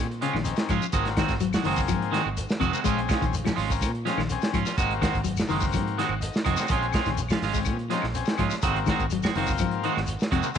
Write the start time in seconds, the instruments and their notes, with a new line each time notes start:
0.00 fingered electric bass A#2
0.11 closed hi-hat
0.21 clean electric guitar C#3 G#3 C#4 F4, transistor combo organ C4 C#4 G#4, closed hi-hat
0.33 fingered electric bass A#1, clean electric guitar D#3, snare, claves
0.44 transistor combo organ C4 C#4 D#4, closed hi-hat, shekere
0.56 snare, closed hi-hat, shekere
0.69 fingered electric bass G#2, clean electric guitar F3 G#3 C#4 F4, kick, closed hi-hat, claves, shekere
0.82 muted fingered electric bass stroke, shekere
0.92 fingered electric bass G#1, clean electric guitar D#3 G#3 F#4, transistor combo organ A#3 C4 F#4, muted clean electric guitar stroke, kick, closed hi-hat, shekere
1.05 snare, closed hi-hat
1.17 clean electric guitar D#3 G#3 C4 F#4, kick, snare, closed hi-hat, claves, shekere
1.28 fingered electric bass G#1, kick, snare, closed hi-hat, shekere
1.40 clean electric guitar F#3, closed hi-hat, shekere
1.53 clean electric guitar G#3 F#4, snare, closed hi-hat, claves, shekere
1.63 fingered electric bass F#1, clean electric guitar D#3 G#3 C4 F#4, transistor combo organ A#3 C4 G#4, open hi-hat, shekere
1.76 kick, shekere
1.88 fingered electric bass G#2, clean electric guitar F3, kick, closed hi-hat, claves, shekere
2.02 closed hi-hat
2.12 clean electric guitar D#3 G#3 C4 F#4, snare, closed hi-hat
2.25 fingered electric bass G#1, claves
2.37 closed hi-hat, shekere
2.49 snare, shekere
2.60 fingered electric bass F2, clean electric guitar C3 D#3 G#3 C4 F#4, kick, closed hi-hat, claves, shekere
2.72 clean electric guitar G#3 C4 F#4, transistor combo organ A#3 C4 F#4, muted fingered electric bass stroke, shekere
2.84 fingered electric bass A#1, clean electric guitar G#3 C#4 F4, transistor combo organ C4 C#4 G#4, kick, closed hi-hat, shekere
2.98 closed hi-hat
3.08 clean electric guitar G#3 C#4 F4, kick, snare, closed hi-hat, claves, shekere
3.21 fingered electric bass A#1, clean electric guitar D#3, kick, closed hi-hat, shekere
3.34 closed hi-hat, shekere
3.45 clean electric guitar F3 C#4, muted clean electric guitar stroke, snare, closed hi-hat, claves, shekere
3.56 fingered electric bass G#1, clean electric guitar G#3 C#4 F4, open hi-hat, shekere
3.70 transistor combo organ C4 C#4 A#4, muted clean electric guitar stroke, kick, shekere
3.82 fingered electric bass A#2, kick, closed hi-hat, claves, shekere
3.95 closed hi-hat
4.05 clean electric guitar F3 G#3 C#4 F4, transistor combo organ C4 C#4 G#4, snare, closed hi-hat
4.18 fingered electric bass A#1, clean electric guitar D#3, snare, claves
4.29 transistor combo organ C4 C#4 G#4, closed hi-hat, shekere
4.41 snare, closed hi-hat, shekere
4.53 fingered electric bass G#2, clean electric guitar F3 C#4 F4, kick, closed hi-hat, claves, shekere
4.66 clean electric guitar C#4 F4, muted fingered electric bass stroke, snare, shekere
4.77 fingered electric bass G#1, clean electric guitar G#3 F#4, transistor combo organ A#3 C4 F#4, muted clean electric guitar stroke, kick, closed hi-hat, shekere
4.91 closed hi-hat
5.01 clean electric guitar D#3 G#3 C4 F#4, kick, snare, closed hi-hat, claves, shekere
5.14 fingered electric bass G#1, kick, closed hi-hat, shekere
5.24 clean electric guitar F#3, closed hi-hat, shekere
5.37 snare, closed hi-hat, claves, shekere
5.48 fingered electric bass F#1, clean electric guitar D#3 G#3, transistor combo organ A#3 C4 F#4, open hi-hat, shekere
5.60 kick, shekere
5.73 fingered electric bass G#2, clean electric guitar F3, kick, closed hi-hat, claves, shekere
5.87 closed hi-hat
5.97 clean electric guitar D#3 G#3 C4 F#4, transistor combo organ F#5, snare, closed hi-hat
6.09 fingered electric bass G#1, claves
6.21 transistor combo organ D#5, closed hi-hat, shekere
6.34 snare, shekere
6.45 fingered electric bass F2, clean electric guitar C3 D#3 G#3 C4 F#4, transistor combo organ C#5, kick, closed hi-hat, claves, shekere
6.57 clean electric guitar G#3 C4 F#4, transistor combo organ A#3 C4 F#4, muted fingered electric bass stroke, snare, shekere
6.68 fingered electric bass A#1, clean electric guitar G#3 C#4 F4, transistor combo organ C4, muted clean electric guitar stroke, kick, closed hi-hat, shekere
6.72 transistor combo organ C#4 G#4
6.82 closed hi-hat
6.92 clean electric guitar G#3 C#4 F4, kick, snare, closed hi-hat, claves, shekere
7.05 fingered electric bass A#1, clean electric guitar D#3, kick, snare, closed hi-hat, shekere
7.17 closed hi-hat, shekere
7.29 clean electric guitar F3 C#4 F4, snare, closed hi-hat, claves, shekere
7.42 fingered electric bass G#1, clean electric guitar G#3 C#4 F4, snare, open hi-hat, shekere
7.53 clean electric guitar G#3, transistor combo organ C4 C#4 G#4, kick, shekere
7.65 fingered electric bass A#2, kick, closed hi-hat, claves, shekere
7.79 closed hi-hat
7.90 clean electric guitar F3 G#3 C#4 F4, transistor combo organ C4 C#4 D#4, snare, closed hi-hat
8.02 fingered electric bass A#1, snare, claves
8.14 transistor combo organ C4 C#4 G#4, closed hi-hat, shekere
8.25 snare, closed hi-hat, shekere
8.38 fingered electric bass G#2, clean electric guitar F3 G#3 C#4 F4, kick, closed hi-hat, claves, shekere
8.50 muted fingered electric bass stroke, snare, shekere
8.62 fingered electric bass G#1, clean electric guitar D#3 G#3 C4 F#4, transistor combo organ A#3 C4 F#4, kick, closed hi-hat, shekere
8.76 closed hi-hat
8.86 clean electric guitar D#3 G#3 C4, kick, snare, closed hi-hat, claves, shekere
8.91 clean electric guitar F#4
9.00 fingered electric bass G#1, kick, closed hi-hat, shekere
9.10 clean electric guitar F#3, closed hi-hat, shekere
9.23 clean electric guitar G#3 C4 F#4, snare, closed hi-hat, claves, shekere
9.35 fingered electric bass F#1, clean electric guitar D#3 G#3 C4 F#4, transistor combo organ A#3 C4 F4, open hi-hat, shekere
9.47 kick, shekere
9.58 fingered electric bass G#2, clean electric guitar F3, kick, closed hi-hat, claves, shekere
9.71 closed hi-hat
9.84 clean electric guitar D#3 G#3 C4 F#4, closed hi-hat
9.96 fingered electric bass G#1, snare, claves
10.07 closed hi-hat, shekere
10.20 snare, shekere
10.31 fingered electric bass F2, clean electric guitar C3 D#3 G#3 C4 F#4, kick, closed hi-hat, claves, shekere
10.43 transistor combo organ A#3 C4 F#4, muted fingered electric bass stroke, shekere
10.55 transistor combo organ C4, shekere